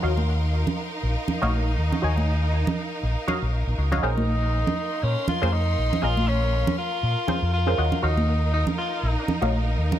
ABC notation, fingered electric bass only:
X:1
M:4/4
L:1/16
Q:"Swing 16ths" 1/4=120
K:Ebdor
V:1 name="Fingered electric bass" clef=bass
E,,4- E,, z3 B,,, z2 B,,,3 E,, z | E,,4- E,, z3 B,,, z2 B,,,2 B,,, D,,2 | B,,,4- B,,, z3 B,, z2 F,,3 B,,, z | B,,,4- B,,, z3 B,, z2 F,,3 E,, z |
E,,4- E,, z3 B,,, z2 B,,,3 E,, z |]